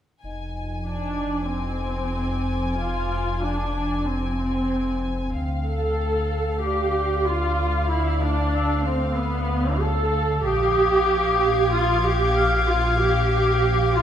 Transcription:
0.22 F1 F2 D#4 D#5 G#5
0.86 D4
0.90 D6
1.52 C4
2.79 F4
3.12 F5
3.42 D4
4.07 C4
5.35 D2 F5 G5
5.66 A4
6.62 G4 D5 D6
7.27 F4
7.90 E4
8.22 D4
8.55 E6
8.85 C4
9.17 B3
9.81 A4
10.45 A#1 G4 F5 D6 D#6 G#6
11.74 F4
12.05 G4
12.35 F5 F6
12.68 F4
13.01 G4
13.96 F4

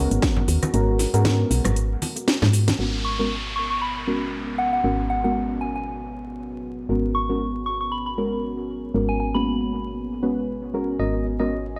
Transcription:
Already playing: G#3 B3 C#4 F#4 A#4
0.11 G#1, closed hi-hat, shaker
0.22 kick, snare, closed hi-hat, shaker
0.36 low conga
0.48 D#2, open hi-hat, shaker
0.63 cross-stick, closed hi-hat, high conga, shaker
0.74 G#1 G#3 B3 C#4 F#4 A#4, closed hi-hat, high bongo, shaker
0.99 snare, open hi-hat, shaker
1.14 G#2 G#3 B3 C#4 F#4 A#4, closed hi-hat, shaker
1.25 snare, closed hi-hat, high conga, shaker
1.51 B1, open hi-hat, shaker
1.64 G#1, cross-stick, closed hi-hat, low conga, shaker
1.76 closed hi-hat, shaker
2.02 open hi-hat, high conga, shaker
2.16 closed hi-hat, high bongo, shaker
2.28 snare, closed hi-hat, shaker
2.42 G#2, snare, low conga
2.53 open hi-hat, shaker
2.68 snare, closed hi-hat, high conga, shaker
2.79 G#1 G#3 B3 C#4 F#4 A#4, downlifter
3.05 C#6
3.13 F#4
3.19 G#3 B3 C#4 F#4 A#4
3.29 G#5
3.37 C#5
3.56 C#6
3.70 C#6
3.82 B5
3.96 B5
4.07 G#3 B3 C#4 F#4 A#4
4.58 F#5
4.73 F#5
4.84 G#1 G#3 B3 C#4 F#4 A#4
5.10 F#5
5.24 G#3 B3 C#4 F#4 A#4 F#5
5.61 G#5
5.76 G#5
6.89 G#1 G#3 B3 C#4 F#4 A#4
7.15 C#6
7.29 G#3 B3 C#4 F#4 A#4
7.66 C#6
7.81 C#6
7.92 B5
8.06 B5
8.17 G#3 B3 C#4 F#4 A#4
8.94 G#1 G#3 B3 C#4 F#4 A#4
9.09 G#5
9.20 G#5
9.34 G#3 A#3 B3 C#4 F#4 B5
10.23 G#3 B3 C#4 F#4 B4
10.74 G#3 B3 C#4 F#4 A#4
10.99 G#1 G#3 B3 C#4 F#4 A#4 D#5
11.39 G#3 B3 C#4 F#4 A#4 D#5
11.76 D#5

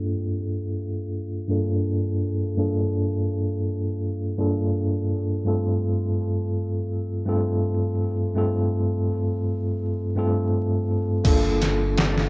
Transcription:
Already playing: G2 A#3 D4 F4 A4
1.48 G2 A#3 D4 F4 A4
2.56 G2 A#3 D4 F4 A4
4.37 G2 A#3 D4 F4 A4
5.45 G2 A3 C4 F4 A4
7.26 G2 A3 C4 F4 A4
8.35 G2 A3 C4 F4 A4
10.16 G2 A3 C4 F4 A4
11.24 G1 A#3 D4 F4 A4, kick, closed hi-hat, crash
11.62 snare, closed hi-hat
11.97 snare, closed hi-hat
12.18 snare

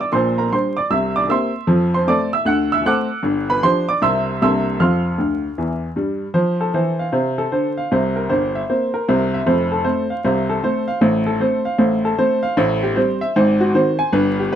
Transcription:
0.01 D5 D6
0.12 A#1 A#2 C5 C6
0.38 A#4 A#5
0.52 G3 D4 G4 C5 C6
0.76 D5 D6
0.91 C2 C3 E5 E6
1.16 D5 D6
1.29 A#3 C4 G4 E5 C6 E6
1.67 F2 F3
1.94 C5 C6
2.07 A3 C4 A4 D5 D6
2.33 E5 E6
2.45 D2 D3 F#5 F#6
2.72 E5 E6
2.86 A3 C4 A4 F#5 D6 F#6
3.23 G1 G2
3.50 B4 B5
3.63 F3 D4 G4 C5 C6
3.88 D5 D6
4.02 C2 C3 G3 C4 A#4 E5 C6 E6
4.42 C2 C3 A#3 D4 A4 E5 C6 E6
4.80 F2 F3 F5 C6 F6
5.18 D2 D3
5.58 E2 E3
5.96 G2 G3
6.34 F3 C5
6.61 A4
6.74 E3 C5
6.99 F5
7.12 C3 C5
7.38 A4
7.52 D3 C5
7.77 F5
7.91 C2 C3 C5
8.16 A#4
8.29 G1 G2 C5
8.55 E5
8.70 A#3 C4 C5
8.94 A#4
9.08 C2 C3 C5
9.34 E5
9.46 F1 F2 C5
9.72 A4
9.84 A3 C4 C5
10.10 F5
10.25 C2 C3 C5
10.49 A4
10.64 A3 C4 C5
10.88 F5
11.01 A1 A2 C5
11.26 A4
11.40 A3 C4 C5
11.65 F5
11.78 A1 A2 C5
12.05 A4
12.19 A3 C4 C5
12.43 F5
12.57 A1 A2 C5
12.83 G4
12.96 G3 C4 C5
13.21 E5
13.36 G#1 G#2 C5
13.60 F#4
13.74 D#3 C4 C5
13.99 G#5
14.13 G1 G2 B4
14.40 G4

